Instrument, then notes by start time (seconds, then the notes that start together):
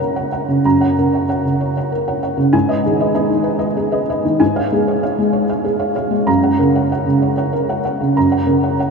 felt piano
Already playing: F#2 C#3 C#5 F#5 A#5
0.00 A#4
0.16 C#5 F#5
0.32 C#5 F#5
0.48 C#3
0.65 F#2 A#5
0.80 C#5 F#5
0.98 C#3 A#4
1.14 C#5 F#5
1.29 C#5 F#5
1.45 C#3
1.61 C#5
1.77 C#5 F#5
1.92 A#4
2.08 C#5 F#5
2.23 C#5 F#5
2.37 C#3
2.53 G#2 G#5
2.69 B4 D#5
2.86 D#3 G#4
3.00 B4 D#5
3.14 D#4 B4 D#5
3.30 D#3
3.44 B4
3.59 B4 D#5
3.77 G#4
3.92 B4 D#5
4.10 B4 D#5
4.25 D#3
4.40 G#2 G#5
4.56 C#5 F5
4.72 G#3 G#4
4.88 C#5 F5
5.03 C#5 F5
5.18 G#3
5.33 C#5
5.49 C#5 F5
5.65 G#4
5.79 C#5 F5
5.95 C#5 F5
6.10 G#3
6.27 F#2 A#5
6.43 C#5 F#5
6.59 C#3 A#4
6.75 C#5 F#5
6.92 C#5 F#5
7.06 C#3
7.22 C#5
7.37 C#5 F#5
7.53 A#4
7.69 C#5 F#5
7.85 C#5 F#5
8.01 C#3
8.17 F#2 A#5
8.32 C#5 F#5
8.46 C#3 A#4
8.63 C#5 F#5
8.79 C#5 F#5